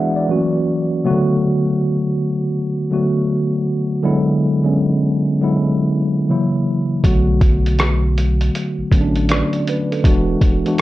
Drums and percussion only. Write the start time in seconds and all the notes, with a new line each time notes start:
7.04 kick, closed hi-hat
7.41 kick, closed hi-hat
7.66 closed hi-hat
7.79 cross-stick, closed hi-hat
8.18 closed hi-hat
8.41 closed hi-hat
8.55 closed hi-hat
8.92 kick, closed hi-hat
9.16 closed hi-hat
9.29 cross-stick, closed hi-hat
9.53 closed hi-hat
9.67 closed hi-hat
9.92 closed hi-hat
10.04 kick, closed hi-hat
10.41 kick, closed hi-hat
10.66 closed hi-hat